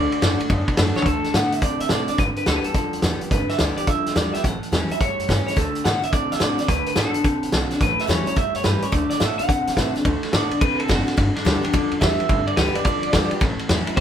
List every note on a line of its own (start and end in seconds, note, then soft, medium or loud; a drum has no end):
0.00 0.19 D3 medium
0.00 0.21 D3 medium
0.00 0.20 A3 medium
0.00 0.74 D5 medium
0.12 muted upright bass stroke medium
0.12 ride medium
0.21 0.37 F#2 loud
0.21 0.47 D3 medium
0.21 0.39 D3 loud
0.21 0.48 A3 medium
0.21 0.40 A3 loud
0.21 0.40 D4 loud
0.21 0.39 F#4 loud
0.21 snare loud
0.21 ride medium
0.40 0.50 D4 soft
0.40 0.49 F#4 medium
0.40 muted upright bass stroke medium
0.40 ride medium
0.49 0.65 F#2 medium
0.49 1.04 A2 medium
0.49 0.75 D3 medium
0.49 0.76 B3 medium
0.49 kick loud
0.49 ride medium
0.68 kick medium
0.68 ride medium
0.77 0.93 F#2 medium
0.77 1.03 D3 medium
0.77 0.95 D3 medium
0.77 1.04 A3 medium
0.77 0.95 A3 medium
0.77 0.96 D4 loud
0.77 0.94 F#4 loud
0.77 snare loud
0.77 ride loud
0.95 1.07 D4 medium
0.95 1.05 F#4 medium
0.95 1.06 C#5 medium
0.95 muted upright bass stroke medium
0.95 snare medium
1.02 1.18 D2 medium
1.02 1.32 D3 medium
1.02 1.33 D3 medium
1.02 1.34 A3 medium
1.02 kick loud
1.02 closed hi-hat medium
1.02 floor tom medium
1.06 1.35 A4 medium
1.24 muted upright bass stroke medium
1.24 snare soft
1.24 closed hi-hat medium
1.34 1.46 A2 medium
1.34 1.60 D3 medium
1.34 1.61 D3 medium
1.34 1.62 A3 medium
1.34 1.60 B3 medium
1.34 1.62 D4 loud
1.34 1.62 F#4 medium
1.34 1.53 F#5 medium
1.34 snare loud
1.34 closed hi-hat medium
1.52 1.63 E5 loud
1.52 muted upright bass stroke medium
1.52 closed hi-hat medium
1.62 2.17 A2 medium
1.62 1.89 D3 medium
1.62 1.89 C4 medium
1.62 1.81 D5 loud
1.62 kick loud
1.62 closed hi-hat medium
1.80 1.87 B2 medium
1.80 1.90 E5 medium
1.80 closed hi-hat medium
1.89 2.02 B2 medium
1.89 2.16 D3 medium
1.89 2.08 D3 medium
1.89 2.08 A3 medium
1.89 2.16 C4 medium
1.89 2.09 D4 medium
1.89 2.07 F#4 loud
1.89 2.08 D5 medium
1.89 snare loud
1.89 closed hi-hat medium
2.08 2.19 D4 medium
2.08 2.18 F#4 medium
2.08 2.18 D5 medium
2.08 muted upright bass stroke medium
2.08 closed hi-hat medium
2.18 2.31 G1 medium
2.18 2.45 G2 medium
2.18 2.73 G2 medium
2.18 2.47 D3 medium
2.18 2.24 B4 loud
2.18 kick loud
2.18 snare soft
2.18 closed hi-hat medium
2.36 2.47 B4 medium
2.36 muted upright bass stroke medium
2.36 closed hi-hat medium
2.46 2.59 D2 medium
2.46 2.73 G2 medium
2.46 2.64 D3 medium
2.46 2.73 E3 medium
2.46 2.64 G3 medium
2.46 2.65 B3 loud
2.46 2.64 G4 loud
2.46 2.55 A4 medium
2.46 snare loud
2.46 closed hi-hat medium
2.56 2.65 B4 medium
2.64 2.76 B3 medium
2.64 2.74 G4 medium
2.64 3.00 A4 medium
2.64 closed hi-hat medium
2.74 3.01 G2 medium
2.74 3.02 D3 medium
2.74 3.02 F3 medium
2.74 kick loud
2.74 closed hi-hat medium
2.93 3.00 E2 medium
2.93 closed hi-hat medium
3.02 3.15 E2 medium
3.02 3.29 G2 medium
3.02 3.20 D3 medium
3.02 3.29 F3 medium
3.02 3.21 G3 medium
3.02 3.21 B3 loud
3.02 3.20 G4 loud
3.02 snare loud
3.02 closed hi-hat medium
3.21 3.32 B3 soft
3.21 3.31 G4 medium
3.21 muted upright bass stroke medium
3.21 closed hi-hat medium
3.31 3.44 G1 medium
3.31 3.58 G2 medium
3.31 3.86 G2 medium
3.31 3.59 D3 medium
3.31 3.50 B4 loud
3.31 kick loud
3.31 snare soft
3.31 closed hi-hat medium
3.49 3.60 E5 medium
3.49 muted upright bass stroke medium
3.49 snare soft
3.49 closed hi-hat medium
3.58 3.72 D2 loud
3.58 3.85 G2 medium
3.58 3.77 D3 medium
3.58 3.85 E3 loud
3.58 3.77 G3 medium
3.58 3.77 B3 loud
3.58 3.76 G4 loud
3.58 3.76 D5 loud
3.58 snare loud
3.58 closed hi-hat medium
3.77 3.88 B3 medium
3.77 3.87 G4 medium
3.77 3.88 D5 medium
3.77 muted upright bass stroke medium
3.77 closed hi-hat medium
3.87 4.14 G2 medium
3.87 4.14 D3 medium
3.87 4.14 F3 medium
3.87 4.16 E5 loud
3.87 kick loud
3.87 closed hi-hat medium
4.06 4.13 E2 medium
4.06 snare soft
4.06 closed hi-hat medium
4.15 4.28 E2 loud
4.15 4.41 G2 medium
4.15 4.33 D3 medium
4.15 4.42 F3 medium
4.15 4.33 G3 loud
4.15 4.34 B3 medium
4.15 4.32 G4 loud
4.15 4.33 D5 loud
4.15 snare loud
4.15 closed hi-hat medium
4.34 4.44 B3 medium
4.34 4.43 G4 medium
4.34 4.44 E5 medium
4.34 muted upright bass stroke medium
4.34 snare soft
4.34 closed hi-hat medium
4.43 4.56 A1 medium
4.43 4.71 A2 medium
4.43 4.98 A2 medium
4.43 4.72 E3 loud
4.43 4.90 F#5 loud
4.43 kick loud
4.43 closed hi-hat medium
4.62 muted upright bass stroke medium
4.62 closed hi-hat medium
4.72 4.84 E2 medium
4.72 4.98 A2 medium
4.72 4.89 E3 medium
4.72 4.98 F#3 loud
4.72 4.90 G3 medium
4.72 4.90 C#4 loud
4.72 4.89 E4 medium
4.72 snare loud
4.72 closed hi-hat medium
4.90 5.01 C#4 medium
4.90 5.00 E4 medium
4.90 5.00 E5 loud
4.90 muted upright bass stroke medium
4.90 closed hi-hat medium
5.00 5.55 E2 medium
5.00 5.13 G2 medium
5.00 5.27 A2 medium
5.00 5.27 G3 medium
5.00 5.45 C#5 medium
5.00 kick loud
5.00 closed hi-hat medium
5.19 5.25 F#2 medium
5.19 closed hi-hat medium
5.28 5.41 G2 medium
5.28 5.54 A2 medium
5.28 5.46 E3 medium
5.28 5.54 G3 medium
5.28 5.46 G3 medium
5.28 5.46 C#4 medium
5.28 5.45 E4 loud
5.28 kick medium
5.28 snare loud
5.28 closed hi-hat medium
5.46 5.57 C#4 soft
5.46 5.56 E4 medium
5.46 5.57 C#5 medium
5.46 muted upright bass stroke medium
5.46 snare soft
5.46 closed hi-hat medium
5.56 5.69 D2 medium
5.56 5.83 D3 medium
5.56 5.84 A3 medium
5.56 5.83 A4 medium
5.56 kick loud
5.56 snare soft
5.56 closed hi-hat medium
5.75 closed hi-hat medium
5.84 5.97 A2 medium
5.84 6.10 D3 medium
5.84 6.02 D3 medium
5.84 6.02 A3 medium
5.84 6.10 B3 medium
5.84 6.03 D4 medium
5.84 6.01 F#4 loud
5.84 6.01 F#5 loud
5.84 snare loud
5.84 closed hi-hat medium
6.02 6.13 D4 soft
6.02 6.12 F#4 medium
6.02 6.13 E5 medium
6.02 muted upright bass stroke medium
6.02 closed hi-hat medium
6.12 6.67 A2 medium
6.12 6.39 D3 medium
6.12 6.39 C4 medium
6.12 6.32 D5 loud
6.12 kick loud
6.12 closed hi-hat medium
6.31 6.38 B2 medium
6.31 6.41 E5 loud
6.31 snare soft
6.31 closed hi-hat medium
6.40 6.53 B2 loud
6.40 6.58 D3 medium
6.40 6.66 D3 medium
6.40 6.58 A3 medium
6.40 6.67 C4 loud
6.40 6.58 D4 medium
6.40 6.57 F#4 loud
6.40 6.59 D5 medium
6.40 snare loud
6.40 closed hi-hat medium
6.58 6.69 D4 soft
6.58 6.68 F#4 medium
6.58 6.69 D5 medium
6.58 muted upright bass stroke medium
6.58 snare soft
6.58 closed hi-hat medium
6.68 6.81 D2 medium
6.68 6.95 D3 medium
6.68 6.94 D3 medium
6.68 6.96 A3 medium
6.68 6.85 B4 medium
6.68 kick loud
6.68 snare soft
6.68 closed hi-hat medium
6.86 6.97 B4 medium
6.86 muted upright bass stroke medium
6.86 closed hi-hat medium
6.95 7.09 A2 medium
6.95 7.13 D3 loud
6.95 7.22 D3 medium
6.95 7.14 A3 loud
6.95 7.23 B3 loud
6.95 7.14 D4 loud
6.95 7.13 F#4 loud
6.95 7.49 A4 medium
6.95 snare loud
6.95 closed hi-hat medium
7.14 7.25 D4 soft
7.14 7.24 F#4 medium
7.14 muted upright bass stroke medium
7.14 closed hi-hat medium
7.23 7.79 A2 medium
7.23 7.51 D3 medium
7.23 7.52 C4 medium
7.23 kick loud
7.23 closed hi-hat medium
7.43 7.49 B2 medium
7.43 closed hi-hat medium
7.52 7.65 B1 medium
7.52 7.79 D3 medium
7.52 7.70 D3 medium
7.52 7.70 A3 medium
7.52 7.79 C4 medium
7.52 7.71 D4 loud
7.52 7.70 F#4 loud
7.52 snare loud
7.52 closed hi-hat medium
7.71 7.82 D4 soft
7.71 7.81 F#4 medium
7.71 snare soft
7.71 closed hi-hat medium
7.80 7.93 A1 medium
7.80 8.08 A2 medium
7.80 8.35 A2 medium
7.80 8.09 E3 loud
7.80 8.00 B4 medium
7.80 kick loud
7.80 snare soft
7.80 closed hi-hat medium
7.99 8.09 E5 medium
7.99 muted upright bass stroke medium
7.99 snare soft
7.99 closed hi-hat medium
8.07 8.21 E2 medium
8.07 8.35 A2 medium
8.07 8.26 E3 medium
8.07 8.35 F#3 medium
8.07 8.26 G3 loud
8.07 8.26 C#4 medium
8.07 8.25 E4 loud
8.07 8.26 C#5 medium
8.07 snare loud
8.07 closed hi-hat medium
8.26 8.37 C#4 soft
8.26 8.36 E4 medium
8.26 8.37 C#5 medium
8.26 muted upright bass stroke medium
8.26 closed hi-hat medium
8.36 8.91 E2 medium
8.36 8.49 G2 medium
8.36 8.63 A2 medium
8.36 8.64 G3 medium
8.36 8.55 E5 loud
8.36 kick loud
8.36 closed hi-hat medium
8.55 8.62 F#2 medium
8.55 8.64 C#5 medium
8.55 closed hi-hat medium
8.63 8.77 G2 loud
8.63 8.91 A2 medium
8.63 8.82 E3 medium
8.63 8.91 G3 loud
8.63 8.82 G3 loud
8.63 8.83 C#4 loud
8.63 8.81 E4 loud
8.63 8.83 B4 medium
8.63 snare loud
8.63 closed hi-hat medium
8.82 8.93 C#4 medium
8.82 8.92 E4 medium
8.82 8.92 C#5 medium
8.82 muted upright bass stroke medium
8.82 closed hi-hat medium
8.92 9.05 D2 loud
8.92 9.19 D3 medium
8.92 9.21 A3 medium
8.92 9.09 D5 loud
8.92 kick loud
8.92 closed hi-hat medium
9.10 9.20 D5 medium
9.10 muted upright bass stroke medium
9.10 snare soft
9.10 closed hi-hat medium
9.20 9.33 A2 medium
9.20 9.38 D3 medium
9.20 9.47 D3 medium
9.20 9.38 A3 loud
9.20 9.47 B3 medium
9.20 9.39 D4 loud
9.20 9.37 F#4 loud
9.20 9.38 E5 loud
9.20 snare loud
9.20 closed hi-hat medium
9.38 9.50 D4 medium
9.38 9.48 F#4 medium
9.38 9.79 F#5 loud
9.38 muted upright bass stroke medium
9.38 closed hi-hat medium
9.48 10.03 A2 medium
9.48 9.61 B2 medium
9.48 9.75 D3 medium
9.48 9.76 C4 loud
9.48 kick loud
9.48 closed hi-hat loud
9.67 9.74 B2 medium
9.67 snare soft
9.67 closed hi-hat medium
9.76 9.89 B2 medium
9.76 10.03 D3 medium
9.76 9.95 D3 medium
9.76 9.95 A3 medium
9.76 10.03 C4 loud
9.76 9.95 D4 medium
9.76 9.93 F#4 loud
9.76 9.91 E5 loud
9.76 kick medium
9.76 snare loud
9.76 closed hi-hat medium
9.95 10.06 D4 soft
9.95 10.04 F#4 medium
9.95 muted upright bass stroke medium
9.95 snare soft
9.95 closed hi-hat medium
10.05 10.17 D2 medium
10.05 10.32 D3 medium
10.05 10.33 A3 loud
10.05 kick loud
10.05 ride medium
10.23 muted upright bass stroke medium
10.23 snare soft
10.23 ride medium
10.33 10.46 A2 medium
10.33 10.59 D3 medium
10.33 10.51 D3 medium
10.33 10.51 A3 loud
10.33 10.59 B3 medium
10.33 10.51 D4 loud
10.33 10.50 F#4 loud
10.33 10.61 D5 medium
10.33 snare loud
10.33 ride medium
10.51 10.62 D4 soft
10.51 10.61 F#4 medium
10.51 muted upright bass stroke medium
10.51 ride medium
10.61 11.15 A2 medium
10.61 10.88 D3 medium
10.61 10.89 C4 medium
10.61 10.79 B4 medium
10.61 kick loud
10.61 ride medium
10.79 10.89 A4 medium
10.79 ride medium
10.88 11.02 F#1 loud
10.88 11.06 D3 medium
10.88 11.15 D3 medium
10.88 11.07 A3 medium
10.88 11.16 C4 medium
10.88 11.07 D4 medium
10.88 11.34 F#4 medium
10.88 11.06 F#4 loud
10.88 kick medium
10.88 snare loud
10.88 ride loud
11.07 11.18 D4 soft
11.07 11.17 F#4 medium
11.07 snare soft
11.07 ride medium
11.16 11.30 G1 medium
11.16 11.44 G2 medium
11.16 11.71 G2 medium
11.16 11.45 D3 medium
11.16 kick loud
11.16 snare soft
11.16 ride medium
11.36 11.63 D4 medium
11.36 snare soft
11.36 ride medium
11.45 11.58 D2 loud
11.45 11.71 G2 medium
11.45 11.62 D3 loud
11.45 11.71 E3 medium
11.45 11.63 G3 loud
11.45 11.63 B3 loud
11.45 11.62 G4 loud
11.45 snare loud
11.45 ride medium
11.63 11.74 B3 medium
11.63 11.91 D4 loud
11.63 11.73 G4 medium
11.63 muted upright bass stroke medium
11.63 ride medium
11.73 11.86 E2 loud
11.73 12.00 G2 medium
11.73 12.00 D3 medium
11.73 12.01 F3 medium
11.73 kick loud
11.73 ride medium
11.91 11.98 E2 medium
11.91 ride medium
12.01 12.14 E2 loud
12.01 12.27 G2 medium
12.01 12.18 D3 medium
12.01 12.27 F3 medium
12.01 12.19 G3 loud
12.01 12.19 B3 medium
12.01 12.18 G4 loud
12.01 12.46 E5 loud
12.01 kick medium
12.01 snare loud
12.01 ride medium
12.19 12.30 B3 medium
12.19 12.29 G4 medium
12.19 muted upright bass stroke medium
12.19 ride medium
12.29 12.42 G1 loud
12.29 12.83 G2 medium
12.29 12.55 G2 medium
12.29 12.57 D3 medium
12.29 kick loud
12.29 ride medium
12.47 12.57 D5 loud
12.47 muted upright bass stroke medium
12.47 ride medium
12.56 12.70 D2 loud
12.56 12.83 G2 medium
12.56 12.75 D3 medium
12.56 12.83 E3 loud
12.56 12.75 G3 medium
12.56 12.75 B3 loud
12.56 12.75 G4 loud
12.56 12.74 B4 loud
12.56 snare loud
12.56 ride medium
12.75 12.86 B3 medium
12.75 12.85 G4 medium
12.75 12.84 D5 medium
12.75 muted upright bass stroke medium
12.75 ride medium
12.85 12.98 E2 medium
12.85 13.12 G2 medium
12.85 13.12 D3 medium
12.85 13.13 F3 medium
12.85 13.39 D5 loud
12.85 kick loud
12.85 ride medium
13.03 13.10 E2 loud
13.03 ride medium
13.13 13.26 E2 loud
13.13 13.39 G2 medium
13.13 13.30 D3 medium
13.13 13.39 F3 loud
13.13 13.31 G3 medium
13.13 13.32 B3 loud
13.13 13.31 G4 loud
13.13 kick medium
13.13 snare loud
13.13 ride medium
13.31 13.42 B3 soft
13.31 13.41 G4 medium
13.31 muted upright bass stroke medium
13.31 ride medium
13.41 13.54 A1 medium
13.41 13.95 A2 medium
13.41 13.68 A2 medium
13.41 13.69 E3 loud
13.41 kick loud
13.41 snare soft
13.41 ride medium
13.59 muted upright bass stroke medium
13.59 ride medium
13.69 13.82 E2 medium
13.69 13.95 A2 medium
13.69 13.87 E3 medium
13.69 13.95 F#3 loud
13.69 13.87 G3 medium
13.69 13.87 C#4 loud
13.69 13.86 E4 loud
13.69 snare loud
13.69 ride medium
13.87 13.98 C#4 medium
13.87 13.97 E4 medium
13.87 muted upright bass stroke medium
13.87 ride medium
13.96 14.00 A2 medium
13.96 14.00 C5 loud
13.96 kick loud
13.96 ride medium